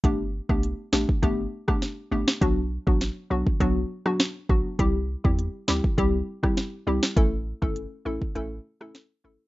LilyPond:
<<
  \new Staff \with { instrumentName = "Synth pluck" } { \time 4/4 \key g \lydian \tempo 4 = 101 <a b d' g'>16 r8 <a b d' g'>16 r8 <a b d' g'>16 r16 <a b d' g'>16 r8 <a b d' g'>16 r8 <a b d' g'>16 r16 | <fis b d' fis'>16 r8 <fis b d' fis'>16 r8 <fis b d' fis'>16 r16 <fis b d' fis'>16 r8 <fis b d' fis'>16 r8 <fis b d' fis'>16 r16 | <g c' e' g'>16 r8 <g c' e' g'>16 r8 <g c' e' g'>16 r16 <g c' e' g'>16 r8 <g c' e' g'>16 r8 <g c' e' g'>16 r16 | <a cis' e' a'>16 r8 <a cis' e' a'>16 r8 <a cis' e' a'>16 r16 <a cis' e' a'>16 r8 <a cis' e' a'>16 r8 <a cis' e' a'>16 r16 | }
  \new Staff \with { instrumentName = "808-style bass" } { \clef bass \time 4/4 \key g \lydian g,,8. b,,8 r16 a,,16 r16 g,,8 r4 g,,16 r16 | b,,8. a,,8 r16 b,,16 r16 b,,8 r4 a,,16 r16 | c,8. e,8 r16 d,16 r16 c,8 r4 c,16 r16 | a,,8. g,,8 r16 a,,16 r16 a,,8 r4 g,,16 r16 | }
  \new DrumStaff \with { instrumentName = "Drums" } \drummode { \time 4/4 <hh bd>8. bd16 hh8 sn16 bd16 <hh bd>8. <bd ss>16 <hh sn>8. sn16 | <hh bd>8. bd16 <hh sn>8. bd16 <hh bd>8. ss16 <hh sn>8 bd8 | <hh bd>8. bd16 hh8 sn16 bd16 <hh bd>8. <bd ss>16 <hh sn>8. sn16 | <hh bd>8. bd16 hh8. bd16 hh8. ss16 <hh sn>4 | }
>>